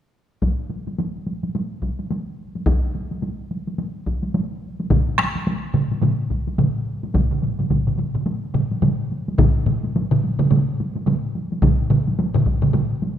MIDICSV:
0, 0, Header, 1, 2, 480
1, 0, Start_track
1, 0, Tempo, 560224
1, 362, Time_signature, 4, 2, 24, 8
1, 11299, End_track
2, 0, Start_track
2, 0, Title_t, "Taiko and cinematic ensemble drums"
2, 359, Note_on_c, 9, 41, 68
2, 361, Note_on_c, 9, 48, 58
2, 445, Note_off_c, 9, 41, 0
2, 447, Note_off_c, 9, 48, 0
2, 603, Note_on_c, 9, 48, 45
2, 689, Note_off_c, 9, 48, 0
2, 749, Note_on_c, 9, 48, 46
2, 835, Note_off_c, 9, 48, 0
2, 844, Note_on_c, 9, 48, 59
2, 930, Note_off_c, 9, 48, 0
2, 1085, Note_on_c, 9, 48, 43
2, 1170, Note_off_c, 9, 48, 0
2, 1228, Note_on_c, 9, 48, 45
2, 1314, Note_off_c, 9, 48, 0
2, 1327, Note_on_c, 9, 48, 57
2, 1412, Note_off_c, 9, 48, 0
2, 1559, Note_on_c, 9, 41, 55
2, 1566, Note_on_c, 9, 48, 41
2, 1644, Note_off_c, 9, 41, 0
2, 1652, Note_off_c, 9, 48, 0
2, 1705, Note_on_c, 9, 48, 41
2, 1791, Note_off_c, 9, 48, 0
2, 1804, Note_on_c, 9, 48, 60
2, 1890, Note_off_c, 9, 48, 0
2, 2188, Note_on_c, 9, 48, 41
2, 2273, Note_off_c, 9, 48, 0
2, 2279, Note_on_c, 9, 41, 85
2, 2281, Note_on_c, 9, 48, 59
2, 2365, Note_off_c, 9, 41, 0
2, 2367, Note_off_c, 9, 48, 0
2, 2525, Note_on_c, 9, 48, 42
2, 2611, Note_off_c, 9, 48, 0
2, 2666, Note_on_c, 9, 48, 44
2, 2752, Note_off_c, 9, 48, 0
2, 2762, Note_on_c, 9, 48, 53
2, 2847, Note_off_c, 9, 48, 0
2, 3007, Note_on_c, 9, 48, 41
2, 3093, Note_off_c, 9, 48, 0
2, 3148, Note_on_c, 9, 48, 43
2, 3234, Note_off_c, 9, 48, 0
2, 3241, Note_on_c, 9, 48, 58
2, 3327, Note_off_c, 9, 48, 0
2, 3482, Note_on_c, 9, 41, 64
2, 3483, Note_on_c, 9, 48, 43
2, 3568, Note_off_c, 9, 41, 0
2, 3568, Note_off_c, 9, 48, 0
2, 3623, Note_on_c, 9, 48, 49
2, 3709, Note_off_c, 9, 48, 0
2, 3722, Note_on_c, 9, 48, 68
2, 3808, Note_off_c, 9, 48, 0
2, 4110, Note_on_c, 9, 48, 46
2, 4196, Note_off_c, 9, 48, 0
2, 4200, Note_on_c, 9, 41, 80
2, 4200, Note_on_c, 9, 45, 75
2, 4201, Note_on_c, 9, 47, 73
2, 4202, Note_on_c, 9, 48, 66
2, 4286, Note_off_c, 9, 41, 0
2, 4286, Note_off_c, 9, 45, 0
2, 4286, Note_off_c, 9, 47, 0
2, 4288, Note_off_c, 9, 48, 0
2, 4438, Note_on_c, 9, 37, 58
2, 4442, Note_on_c, 9, 48, 50
2, 4446, Note_off_c, 9, 37, 0
2, 4446, Note_on_c, 9, 37, 63
2, 4528, Note_off_c, 9, 48, 0
2, 4531, Note_off_c, 9, 37, 0
2, 4588, Note_on_c, 9, 48, 48
2, 4674, Note_off_c, 9, 48, 0
2, 4686, Note_on_c, 9, 48, 61
2, 4771, Note_off_c, 9, 48, 0
2, 4917, Note_on_c, 9, 47, 80
2, 4918, Note_on_c, 9, 45, 81
2, 4926, Note_on_c, 9, 48, 46
2, 5003, Note_off_c, 9, 47, 0
2, 5004, Note_off_c, 9, 45, 0
2, 5011, Note_off_c, 9, 48, 0
2, 5069, Note_on_c, 9, 48, 50
2, 5154, Note_off_c, 9, 48, 0
2, 5154, Note_on_c, 9, 47, 84
2, 5162, Note_on_c, 9, 45, 80
2, 5164, Note_on_c, 9, 48, 67
2, 5240, Note_off_c, 9, 47, 0
2, 5247, Note_off_c, 9, 45, 0
2, 5250, Note_off_c, 9, 48, 0
2, 5401, Note_on_c, 9, 41, 54
2, 5403, Note_on_c, 9, 48, 42
2, 5486, Note_off_c, 9, 41, 0
2, 5489, Note_off_c, 9, 48, 0
2, 5546, Note_on_c, 9, 48, 50
2, 5632, Note_off_c, 9, 48, 0
2, 5640, Note_on_c, 9, 47, 86
2, 5641, Note_on_c, 9, 48, 62
2, 5643, Note_on_c, 9, 45, 82
2, 5726, Note_off_c, 9, 47, 0
2, 5726, Note_off_c, 9, 48, 0
2, 5729, Note_off_c, 9, 45, 0
2, 6028, Note_on_c, 9, 48, 49
2, 6113, Note_off_c, 9, 48, 0
2, 6118, Note_on_c, 9, 48, 58
2, 6123, Note_on_c, 9, 41, 75
2, 6126, Note_on_c, 9, 47, 54
2, 6127, Note_on_c, 9, 45, 56
2, 6204, Note_off_c, 9, 48, 0
2, 6208, Note_off_c, 9, 41, 0
2, 6212, Note_off_c, 9, 47, 0
2, 6213, Note_off_c, 9, 45, 0
2, 6264, Note_on_c, 9, 47, 63
2, 6273, Note_on_c, 9, 45, 57
2, 6350, Note_off_c, 9, 47, 0
2, 6358, Note_on_c, 9, 47, 55
2, 6359, Note_off_c, 9, 45, 0
2, 6361, Note_on_c, 9, 48, 41
2, 6369, Note_on_c, 9, 45, 56
2, 6443, Note_off_c, 9, 47, 0
2, 6447, Note_off_c, 9, 48, 0
2, 6455, Note_off_c, 9, 45, 0
2, 6502, Note_on_c, 9, 47, 55
2, 6507, Note_on_c, 9, 48, 45
2, 6508, Note_on_c, 9, 45, 57
2, 6588, Note_off_c, 9, 47, 0
2, 6593, Note_off_c, 9, 48, 0
2, 6594, Note_off_c, 9, 45, 0
2, 6599, Note_on_c, 9, 41, 56
2, 6600, Note_on_c, 9, 47, 63
2, 6602, Note_on_c, 9, 48, 59
2, 6608, Note_on_c, 9, 45, 62
2, 6684, Note_off_c, 9, 41, 0
2, 6685, Note_off_c, 9, 47, 0
2, 6688, Note_off_c, 9, 48, 0
2, 6694, Note_off_c, 9, 45, 0
2, 6743, Note_on_c, 9, 47, 61
2, 6748, Note_on_c, 9, 45, 59
2, 6829, Note_off_c, 9, 47, 0
2, 6834, Note_off_c, 9, 45, 0
2, 6834, Note_on_c, 9, 47, 57
2, 6840, Note_on_c, 9, 48, 42
2, 6844, Note_on_c, 9, 45, 58
2, 6920, Note_off_c, 9, 47, 0
2, 6926, Note_off_c, 9, 48, 0
2, 6930, Note_off_c, 9, 45, 0
2, 6978, Note_on_c, 9, 47, 60
2, 6984, Note_on_c, 9, 45, 62
2, 7064, Note_off_c, 9, 47, 0
2, 7069, Note_off_c, 9, 45, 0
2, 7080, Note_on_c, 9, 48, 62
2, 7165, Note_off_c, 9, 48, 0
2, 7317, Note_on_c, 9, 47, 75
2, 7321, Note_on_c, 9, 45, 87
2, 7323, Note_on_c, 9, 48, 44
2, 7403, Note_off_c, 9, 47, 0
2, 7407, Note_off_c, 9, 45, 0
2, 7409, Note_off_c, 9, 48, 0
2, 7466, Note_on_c, 9, 48, 44
2, 7552, Note_off_c, 9, 48, 0
2, 7557, Note_on_c, 9, 47, 85
2, 7558, Note_on_c, 9, 45, 83
2, 7564, Note_on_c, 9, 48, 64
2, 7643, Note_off_c, 9, 47, 0
2, 7644, Note_off_c, 9, 45, 0
2, 7649, Note_off_c, 9, 48, 0
2, 7812, Note_on_c, 9, 48, 40
2, 7897, Note_off_c, 9, 48, 0
2, 7953, Note_on_c, 9, 48, 48
2, 8039, Note_off_c, 9, 48, 0
2, 8040, Note_on_c, 9, 41, 96
2, 8043, Note_on_c, 9, 45, 86
2, 8043, Note_on_c, 9, 47, 83
2, 8052, Note_on_c, 9, 48, 67
2, 8126, Note_off_c, 9, 41, 0
2, 8128, Note_off_c, 9, 45, 0
2, 8128, Note_off_c, 9, 47, 0
2, 8137, Note_off_c, 9, 48, 0
2, 8279, Note_on_c, 9, 45, 86
2, 8279, Note_on_c, 9, 47, 83
2, 8290, Note_on_c, 9, 48, 47
2, 8364, Note_off_c, 9, 47, 0
2, 8365, Note_off_c, 9, 45, 0
2, 8376, Note_off_c, 9, 48, 0
2, 8435, Note_on_c, 9, 48, 52
2, 8520, Note_off_c, 9, 48, 0
2, 8532, Note_on_c, 9, 48, 69
2, 8617, Note_off_c, 9, 48, 0
2, 8664, Note_on_c, 9, 45, 92
2, 8665, Note_on_c, 9, 47, 89
2, 8750, Note_off_c, 9, 45, 0
2, 8751, Note_off_c, 9, 47, 0
2, 8773, Note_on_c, 9, 48, 53
2, 8859, Note_off_c, 9, 48, 0
2, 8905, Note_on_c, 9, 45, 94
2, 8909, Note_on_c, 9, 47, 90
2, 8917, Note_on_c, 9, 48, 52
2, 8991, Note_off_c, 9, 45, 0
2, 8995, Note_off_c, 9, 47, 0
2, 9001, Note_on_c, 9, 45, 90
2, 9002, Note_off_c, 9, 48, 0
2, 9007, Note_on_c, 9, 47, 95
2, 9014, Note_on_c, 9, 48, 67
2, 9087, Note_off_c, 9, 45, 0
2, 9092, Note_off_c, 9, 47, 0
2, 9099, Note_off_c, 9, 48, 0
2, 9255, Note_on_c, 9, 48, 53
2, 9340, Note_off_c, 9, 48, 0
2, 9393, Note_on_c, 9, 48, 54
2, 9479, Note_off_c, 9, 48, 0
2, 9479, Note_on_c, 9, 47, 88
2, 9483, Note_on_c, 9, 45, 89
2, 9489, Note_on_c, 9, 48, 69
2, 9564, Note_off_c, 9, 47, 0
2, 9569, Note_off_c, 9, 45, 0
2, 9574, Note_off_c, 9, 48, 0
2, 9726, Note_on_c, 9, 48, 46
2, 9812, Note_off_c, 9, 48, 0
2, 9871, Note_on_c, 9, 48, 50
2, 9956, Note_off_c, 9, 48, 0
2, 9957, Note_on_c, 9, 41, 91
2, 9958, Note_on_c, 9, 47, 88
2, 9962, Note_on_c, 9, 45, 84
2, 9963, Note_on_c, 9, 48, 76
2, 10042, Note_off_c, 9, 41, 0
2, 10043, Note_off_c, 9, 47, 0
2, 10048, Note_off_c, 9, 45, 0
2, 10048, Note_off_c, 9, 48, 0
2, 10197, Note_on_c, 9, 45, 85
2, 10197, Note_on_c, 9, 47, 86
2, 10203, Note_on_c, 9, 48, 53
2, 10283, Note_off_c, 9, 45, 0
2, 10283, Note_off_c, 9, 47, 0
2, 10288, Note_off_c, 9, 48, 0
2, 10346, Note_on_c, 9, 48, 50
2, 10431, Note_off_c, 9, 48, 0
2, 10442, Note_on_c, 9, 48, 74
2, 10528, Note_off_c, 9, 48, 0
2, 10577, Note_on_c, 9, 45, 95
2, 10584, Note_on_c, 9, 47, 93
2, 10662, Note_off_c, 9, 45, 0
2, 10670, Note_off_c, 9, 47, 0
2, 10675, Note_on_c, 9, 41, 69
2, 10680, Note_on_c, 9, 48, 50
2, 10761, Note_off_c, 9, 41, 0
2, 10765, Note_off_c, 9, 48, 0
2, 10813, Note_on_c, 9, 45, 88
2, 10823, Note_on_c, 9, 47, 84
2, 10823, Note_on_c, 9, 48, 49
2, 10899, Note_off_c, 9, 45, 0
2, 10908, Note_off_c, 9, 47, 0
2, 10909, Note_off_c, 9, 48, 0
2, 10910, Note_on_c, 9, 45, 91
2, 10917, Note_on_c, 9, 47, 81
2, 10917, Note_on_c, 9, 48, 70
2, 10996, Note_off_c, 9, 45, 0
2, 11003, Note_off_c, 9, 47, 0
2, 11003, Note_off_c, 9, 48, 0
2, 11157, Note_on_c, 9, 48, 53
2, 11243, Note_off_c, 9, 48, 0
2, 11299, End_track
0, 0, End_of_file